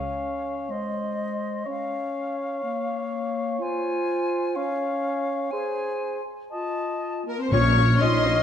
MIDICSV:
0, 0, Header, 1, 11, 480
1, 0, Start_track
1, 0, Key_signature, -5, "major"
1, 0, Tempo, 482703
1, 1667, Time_signature, 4, 2, 24, 8
1, 5501, Tempo, 493827
1, 8317, End_track
2, 0, Start_track
2, 0, Title_t, "Violin section"
2, 0, Program_c, 0, 48
2, 7428, Note_on_c, 0, 85, 65
2, 7871, Note_off_c, 0, 85, 0
2, 7898, Note_on_c, 0, 84, 59
2, 8317, Note_off_c, 0, 84, 0
2, 8317, End_track
3, 0, Start_track
3, 0, Title_t, "Flute"
3, 0, Program_c, 1, 73
3, 0, Note_on_c, 1, 77, 36
3, 699, Note_on_c, 1, 75, 35
3, 714, Note_off_c, 1, 77, 0
3, 1663, Note_off_c, 1, 75, 0
3, 1685, Note_on_c, 1, 77, 41
3, 3556, Note_off_c, 1, 77, 0
3, 3585, Note_on_c, 1, 80, 49
3, 4529, Note_on_c, 1, 77, 49
3, 4544, Note_off_c, 1, 80, 0
3, 5479, Note_on_c, 1, 80, 46
3, 5494, Note_off_c, 1, 77, 0
3, 6172, Note_off_c, 1, 80, 0
3, 6435, Note_on_c, 1, 81, 40
3, 7142, Note_off_c, 1, 81, 0
3, 7442, Note_on_c, 1, 89, 53
3, 8317, Note_off_c, 1, 89, 0
3, 8317, End_track
4, 0, Start_track
4, 0, Title_t, "Cor anglais"
4, 0, Program_c, 2, 69
4, 0, Note_on_c, 2, 73, 38
4, 705, Note_on_c, 2, 72, 36
4, 720, Note_off_c, 2, 73, 0
4, 1640, Note_off_c, 2, 72, 0
4, 1646, Note_on_c, 2, 73, 44
4, 3599, Note_on_c, 2, 72, 51
4, 3614, Note_off_c, 2, 73, 0
4, 4534, Note_on_c, 2, 73, 51
4, 4549, Note_off_c, 2, 72, 0
4, 5489, Note_off_c, 2, 73, 0
4, 5495, Note_on_c, 2, 72, 48
4, 6166, Note_off_c, 2, 72, 0
4, 6457, Note_on_c, 2, 75, 41
4, 7153, Note_off_c, 2, 75, 0
4, 7439, Note_on_c, 2, 73, 53
4, 8317, Note_off_c, 2, 73, 0
4, 8317, End_track
5, 0, Start_track
5, 0, Title_t, "Violin section"
5, 0, Program_c, 3, 48
5, 7212, Note_on_c, 3, 70, 49
5, 7316, Note_off_c, 3, 70, 0
5, 7330, Note_on_c, 3, 72, 37
5, 7440, Note_off_c, 3, 72, 0
5, 7445, Note_on_c, 3, 73, 62
5, 7904, Note_off_c, 3, 73, 0
5, 7912, Note_on_c, 3, 75, 65
5, 8317, Note_off_c, 3, 75, 0
5, 8317, End_track
6, 0, Start_track
6, 0, Title_t, "Clarinet"
6, 0, Program_c, 4, 71
6, 0, Note_on_c, 4, 61, 42
6, 693, Note_on_c, 4, 56, 43
6, 708, Note_off_c, 4, 61, 0
6, 1644, Note_off_c, 4, 56, 0
6, 1650, Note_on_c, 4, 61, 45
6, 2599, Note_off_c, 4, 61, 0
6, 2618, Note_on_c, 4, 58, 46
6, 3584, Note_on_c, 4, 65, 57
6, 3599, Note_off_c, 4, 58, 0
6, 4535, Note_on_c, 4, 61, 55
6, 4550, Note_off_c, 4, 65, 0
6, 5486, Note_off_c, 4, 61, 0
6, 5492, Note_on_c, 4, 68, 54
6, 6165, Note_off_c, 4, 68, 0
6, 6462, Note_on_c, 4, 65, 43
6, 7156, Note_off_c, 4, 65, 0
6, 7194, Note_on_c, 4, 70, 50
6, 7332, Note_on_c, 4, 72, 47
6, 7346, Note_off_c, 4, 70, 0
6, 7437, Note_off_c, 4, 72, 0
6, 7443, Note_on_c, 4, 73, 79
6, 7902, Note_off_c, 4, 73, 0
6, 7911, Note_on_c, 4, 75, 72
6, 8317, Note_off_c, 4, 75, 0
6, 8317, End_track
7, 0, Start_track
7, 0, Title_t, "Viola section"
7, 0, Program_c, 5, 48
7, 7436, Note_on_c, 5, 65, 50
7, 7438, Note_on_c, 5, 61, 50
7, 7514, Note_off_c, 5, 65, 0
7, 7516, Note_off_c, 5, 61, 0
7, 7684, Note_on_c, 5, 61, 44
7, 7684, Note_on_c, 5, 65, 46
7, 7762, Note_off_c, 5, 61, 0
7, 7762, Note_off_c, 5, 65, 0
7, 7920, Note_on_c, 5, 61, 49
7, 7921, Note_on_c, 5, 65, 49
7, 7998, Note_off_c, 5, 61, 0
7, 7999, Note_off_c, 5, 65, 0
7, 8144, Note_on_c, 5, 65, 46
7, 8147, Note_on_c, 5, 61, 51
7, 8222, Note_off_c, 5, 65, 0
7, 8225, Note_off_c, 5, 61, 0
7, 8317, End_track
8, 0, Start_track
8, 0, Title_t, "French horn section"
8, 0, Program_c, 6, 60
8, 7168, Note_on_c, 6, 58, 47
8, 7293, Note_off_c, 6, 58, 0
8, 7301, Note_on_c, 6, 60, 42
8, 7427, Note_off_c, 6, 60, 0
8, 7431, Note_on_c, 6, 61, 61
8, 7893, Note_on_c, 6, 63, 64
8, 7897, Note_off_c, 6, 61, 0
8, 8317, Note_off_c, 6, 63, 0
8, 8317, End_track
9, 0, Start_track
9, 0, Title_t, "Cello section"
9, 0, Program_c, 7, 48
9, 7432, Note_on_c, 7, 46, 57
9, 7851, Note_off_c, 7, 46, 0
9, 7906, Note_on_c, 7, 46, 59
9, 8317, Note_off_c, 7, 46, 0
9, 8317, End_track
10, 0, Start_track
10, 0, Title_t, "Timpani"
10, 0, Program_c, 8, 47
10, 7430, Note_on_c, 8, 46, 64
10, 8104, Note_off_c, 8, 46, 0
10, 8317, End_track
11, 0, Start_track
11, 0, Title_t, "Double bass section"
11, 0, Program_c, 10, 48
11, 7433, Note_on_c, 10, 34, 58
11, 7851, Note_off_c, 10, 34, 0
11, 7902, Note_on_c, 10, 34, 57
11, 8317, Note_off_c, 10, 34, 0
11, 8317, End_track
0, 0, End_of_file